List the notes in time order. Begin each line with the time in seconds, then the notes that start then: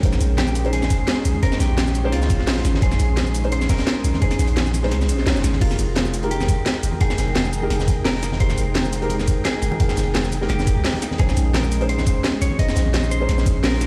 Already playing: G#3 C#4 D#4 C6
0.02 A#1 G#3 C#4 D#4 C5, kick, closed hi-hat
0.12 snare, muted conga, shaker
0.21 A#1, closed hi-hat, shaker
0.37 G4, snare, closed hi-hat, high conga
0.47 muted conga, shaker
0.55 closed hi-hat, shaker
0.64 G#3 C#4 D#4 C5, closed hi-hat
0.73 G#4, closed hi-hat, muted conga
0.82 snare, high conga, shaker
0.90 kick, closed hi-hat, shaker
1.07 snare, closed hi-hat, muted conga
1.25 A#1, closed hi-hat, shaker
1.34 muted conga, high conga
1.41 G#3 C#4 D#4 A#4 C5, kick, closed hi-hat
1.52 snare, shaker
1.60 A#1 G4, snare, closed hi-hat, shaker
1.69 muted conga
1.77 snare, closed hi-hat, high conga
1.87 snare, shaker
1.95 open hi-hat, muted conga, shaker
2.04 G#3 C#4 D#4 G4 C5
2.12 C#2 F4, snare, closed hi-hat
2.21 snare, high conga, shaker
2.29 A#1, kick, closed hi-hat, muted conga, shaker
2.39 snare
2.47 snare, closed hi-hat, open hi-hat
2.57 snare, muted conga
2.65 G#1, snare, closed hi-hat, shaker
2.74 snare, high conga
2.81 A#1 G#3 C#4 D#4 G#4 C5, kick, closed hi-hat
2.92 snare, muted conga, shaker
3.00 A#1, closed hi-hat, shaker
3.17 snare, closed hi-hat, muted conga, high conga
3.26 shaker
3.35 closed hi-hat, shaker
3.43 G#3 C#4 D#4 C5, closed hi-hat
3.52 C5, closed hi-hat, muted conga
3.61 snare, high conga, shaker
3.69 A#4, kick, snare, closed hi-hat, shaker
3.78 snare, closed hi-hat, muted conga
3.87 snare, closed hi-hat
4.04 A#1, closed hi-hat, shaker
4.14 snare, muted conga, high conga
4.20 G#3 C#4 D#4 G#4 C5, kick, closed hi-hat
4.31 snare, closed hi-hat, shaker
4.39 A#1, snare, closed hi-hat, muted conga, shaker
4.47 closed hi-hat
4.56 snare, closed hi-hat, high conga
4.66 snare, shaker
4.74 closed hi-hat, open hi-hat, muted conga, shaker
4.83 G#3 C#4 D#4 C5, snare
4.91 C#2, snare, closed hi-hat
5.01 snare, muted conga, high conga, shaker
5.09 A#1, closed hi-hat, shaker
5.19 snare
5.26 A#1 G#3 C#4 D#4 C#5, snare, closed hi-hat, open hi-hat
5.36 F1, snare, muted conga, shaker
5.44 G#1, snare, closed hi-hat, shaker
5.53 snare, high conga
5.60 F1 G#3 D#4 F4 G4 A#4 G5, kick, closed hi-hat, crash
5.70 snare, shaker
5.79 F1, closed hi-hat, muted conga, shaker
5.96 snare, closed hi-hat, high conga
6.05 muted conga, shaker
6.14 closed hi-hat, shaker
6.22 G#3 D#4 G4 A#4, closed hi-hat
6.31 G4, closed hi-hat
6.41 snare, muted conga, high conga, shaker
6.48 kick, closed hi-hat, shaker
6.66 snare, closed hi-hat, muted conga
6.83 F1, closed hi-hat, shaker
6.92 high conga
6.99 G#3 D#4 G#4 A#4 G5, kick, closed hi-hat, muted conga
7.10 snare, shaker
7.18 F1, snare, closed hi-hat, shaker
7.28 muted conga
7.36 snare, closed hi-hat, high conga
7.44 snare, shaker
7.53 open hi-hat, shaker
7.62 G#3 D#4 G4 A#4, muted conga
7.70 F1, snare, closed hi-hat
7.79 snare, high conga, shaker
7.88 kick, closed hi-hat, muted conga, shaker
8.05 A#4, snare, closed hi-hat, open hi-hat
8.15 snare
8.23 snare, closed hi-hat, muted conga, shaker
8.32 snare, high conga
8.39 F1 G#3 D#4 G4 A#4 C5, kick, closed hi-hat
8.49 snare, muted conga, shaker
8.58 F1, closed hi-hat, shaker
8.75 snare, closed hi-hat, high conga
8.85 muted conga, shaker
8.93 closed hi-hat, shaker
9.01 G#3 D#4 G4 A#4, closed hi-hat
9.10 closed hi-hat, muted conga
9.19 snare, high conga, shaker
9.28 kick, closed hi-hat, shaker
9.45 G#4, snare, closed hi-hat, muted conga
9.62 F1, closed hi-hat, shaker
9.71 muted conga, high conga
9.78 G#3 D#4 A#4 G5, kick, closed hi-hat
9.89 snare, shaker
9.97 F1, snare, closed hi-hat, shaker
10.07 muted conga
10.15 snare, closed hi-hat, high conga
10.24 snare, shaker
10.32 closed hi-hat, open hi-hat, muted conga, shaker
10.41 G#3 D#4 G4 A#4, snare
10.49 F1 G4, snare, closed hi-hat
10.59 snare, high conga, shaker
10.67 F1, kick, closed hi-hat, muted conga, shaker
10.76 C2
10.85 snare, closed hi-hat, open hi-hat
10.94 snare, muted conga
11.02 C#4 C6, snare, closed hi-hat, shaker
11.11 snare, high conga
11.18 A#1 G#3 C#4 D#4 G#4 C5, kick, closed hi-hat
11.29 snare, shaker
11.37 A#1, closed hi-hat, muted conga, shaker
11.54 A#4, snare, closed hi-hat, high conga
11.63 muted conga, shaker
11.72 closed hi-hat, shaker
11.80 G#3 C#4 D#4 C5, closed hi-hat
11.89 C5, closed hi-hat
11.98 snare, muted conga, high conga, shaker
12.06 kick, closed hi-hat, shaker
12.24 snare, closed hi-hat, muted conga
12.42 A#1 C#5, closed hi-hat, shaker
12.51 high conga
12.57 G#3 C#4 D#4 C5 D#5, kick, closed hi-hat, muted conga
12.69 snare, shaker
12.76 A#1, snare, closed hi-hat, shaker
12.86 muted conga
12.94 snare, closed hi-hat, high conga
13.03 snare, shaker
13.11 C5, open hi-hat, shaker
13.20 G#3 C#4 D#4 C5, muted conga
13.29 A#1, snare, closed hi-hat
13.38 snare, high conga, shaker
13.46 kick, closed hi-hat, muted conga, shaker
13.63 A#4, snare, closed hi-hat, open hi-hat
13.73 snare
13.81 snare, closed hi-hat, muted conga, shaker